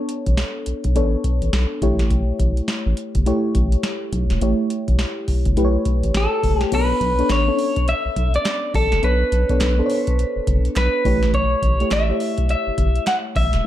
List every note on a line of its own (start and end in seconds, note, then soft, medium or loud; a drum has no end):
0.00 0.95 B3 medium
0.00 0.96 D4 medium
0.00 0.96 A4 medium
0.00 0.96 C#5 loud
0.09 closed hi-hat medium
0.26 0.35 A1 medium
0.26 kick medium
0.26 closed hi-hat soft
0.37 snare loud
0.37 closed hi-hat medium
0.66 0.74 B1 medium
0.66 closed hi-hat medium
0.84 0.97 B1 medium
0.84 kick medium
0.84 closed hi-hat medium
0.95 1.16 A1 loud
0.95 1.82 B3 medium
0.95 1.82 D4 medium
0.95 1.82 A4 medium
0.95 1.82 C#5 medium
0.95 closed hi-hat medium
1.24 kick medium
1.24 closed hi-hat medium
1.42 1.50 A1 medium
1.42 closed hi-hat medium
1.53 1.66 B1 loud
1.53 snare loud
1.53 closed hi-hat medium
1.82 2.23 A1 loud
1.82 2.89 A3 medium
1.82 2.89 E4 medium
1.82 2.89 G4 medium
1.82 2.90 C#5 loud
1.82 kick loud
1.82 closed hi-hat medium
1.99 snare medium
1.99 closed hi-hat medium
2.10 kick loud
2.10 closed hi-hat medium
2.39 2.52 A1 medium
2.39 kick loud
2.39 closed hi-hat medium
2.57 closed hi-hat soft
2.68 snare loud
2.68 closed hi-hat medium
2.86 2.94 A1 medium
2.97 closed hi-hat medium
3.15 3.23 G1 medium
3.15 kick medium
3.15 closed hi-hat medium
3.26 4.33 A3 medium
3.26 4.33 E4 medium
3.26 4.34 G4 medium
3.26 4.34 C#5 loud
3.26 closed hi-hat medium
3.55 3.76 A1 medium
3.55 kick medium
3.55 closed hi-hat medium
3.72 closed hi-hat medium
3.83 snare loud
3.83 closed hi-hat medium
4.13 4.25 B1 medium
4.13 kick loud
4.13 closed hi-hat medium
4.30 4.39 E1 medium
4.30 snare medium
4.30 closed hi-hat medium
4.41 4.54 A1 loud
4.41 5.49 A3 medium
4.41 5.49 E4 medium
4.41 5.49 G4 medium
4.41 5.49 C#5 medium
4.41 closed hi-hat medium
4.70 closed hi-hat medium
4.88 4.96 A1 medium
4.88 kick medium
4.88 closed hi-hat soft
4.99 snare loud
4.99 closed hi-hat medium
5.28 5.35 G1 soft
5.28 kick medium
5.28 open hi-hat medium
5.45 5.54 G1 medium
5.45 kick medium
5.45 closed hi-hat medium
5.57 5.78 B1 loud
5.57 6.64 A3 medium
5.57 6.64 E4 medium
5.57 6.64 G4 medium
5.57 5.65 B4 medium
5.57 closed hi-hat medium
5.64 6.68 C#5 loud
5.85 kick medium
5.85 closed hi-hat medium
6.03 6.11 A1 medium
6.03 closed hi-hat medium
6.14 6.27 A1 loud
6.14 6.62 A4 medium
6.14 snare medium
6.14 closed hi-hat medium
6.43 6.56 F#1 medium
6.43 kick medium
6.43 open hi-hat medium
6.61 6.74 G4 medium
6.61 snare medium
6.61 closed hi-hat medium
6.72 6.93 B1 loud
6.72 7.14 B3 medium
6.72 7.14 D4 medium
6.72 7.14 A4 medium
6.72 7.31 B4 medium
6.72 7.14 C#5 medium
6.72 kick loud
6.72 closed hi-hat medium
6.72 crash medium
7.01 7.14 B1 loud
7.01 kick medium
7.01 closed hi-hat medium
7.19 7.44 B3 medium
7.19 7.45 D4 medium
7.19 7.45 A4 medium
7.19 7.45 C#5 medium
7.19 closed hi-hat medium
7.30 7.51 A1 medium
7.30 7.88 C#5 medium
7.30 snare loud
7.30 clap medium
7.30 closed hi-hat medium
7.47 8.50 B3 medium
7.47 7.53 C#4 medium
7.47 8.50 A4 medium
7.47 8.50 C#5 medium
7.54 8.53 D4 medium
7.59 open hi-hat medium
7.76 kick medium
7.76 closed hi-hat medium
7.88 8.35 E5 medium
7.88 closed hi-hat medium
8.05 8.10 B1 soft
8.16 8.29 B1 medium
8.16 kick loud
8.16 closed hi-hat medium
8.34 8.72 D5 medium
8.34 closed hi-hat medium
8.45 snare loud
8.45 clap medium
8.45 closed hi-hat medium
8.74 8.87 A1 loud
8.74 9.04 A4 medium
8.74 kick loud
8.74 open hi-hat medium
8.92 9.00 F#1 loud
8.92 snare medium
8.92 closed hi-hat medium
9.03 9.24 B1 loud
9.03 9.44 B3 medium
9.03 9.45 D4 medium
9.03 9.45 A4 medium
9.03 10.73 B4 medium
9.03 9.45 C#5 medium
9.03 closed hi-hat medium
9.32 9.45 B1 medium
9.32 closed hi-hat medium
9.49 9.75 B3 medium
9.49 9.75 D4 medium
9.49 9.75 A4 medium
9.49 9.76 C#5 medium
9.49 kick medium
9.49 closed hi-hat soft
9.61 9.82 B1 medium
9.61 snare loud
9.61 clap medium
9.61 closed hi-hat medium
9.78 10.81 B3 medium
9.78 10.81 D4 medium
9.78 10.81 A4 medium
9.78 9.84 C5 medium
9.86 10.84 C#5 medium
9.86 open hi-hat medium
10.07 kick loud
10.07 closed hi-hat medium
10.19 closed hi-hat medium
10.36 10.41 F#1 soft
10.47 10.60 F#1 medium
10.47 kick loud
10.47 closed hi-hat medium
10.65 closed hi-hat medium
10.76 10.89 B1 medium
10.76 11.30 B4 medium
10.76 snare loud
10.76 clap medium
10.76 closed hi-hat medium
11.05 11.46 A1 loud
11.05 11.72 A3 medium
11.05 11.72 E4 medium
11.05 11.73 G4 medium
11.05 11.73 C#5 medium
11.05 kick loud
11.05 open hi-hat medium
11.23 snare medium
11.23 closed hi-hat medium
11.34 11.88 C#5 loud
11.34 kick loud
11.34 closed hi-hat medium
11.62 11.75 A1 medium
11.62 kick loud
11.62 closed hi-hat medium
11.80 12.06 A3 medium
11.80 12.06 E4 medium
11.80 12.06 G4 medium
11.80 12.07 C#5 medium
11.80 closed hi-hat medium
11.91 12.12 A1 medium
11.91 12.49 E5 loud
11.91 snare loud
11.91 clap medium
11.91 closed hi-hat medium
12.09 13.12 A3 medium
12.09 13.12 E4 medium
12.09 13.12 G4 medium
12.09 13.12 C#5 medium
12.20 open hi-hat medium
12.38 kick loud
12.38 closed hi-hat medium
12.49 13.04 E5 loud
12.49 closed hi-hat medium
12.67 12.71 G1 medium
12.78 12.91 G1 medium
12.78 kick loud
12.78 closed hi-hat medium
12.96 closed hi-hat medium
13.07 13.15 F#5 loud
13.07 snare loud
13.07 clap medium
13.07 closed hi-hat medium
13.36 13.48 A1 loud
13.36 13.67 E5 loud
13.36 kick loud
13.36 open hi-hat medium
13.53 13.61 E1 loud
13.53 snare medium
13.53 closed hi-hat medium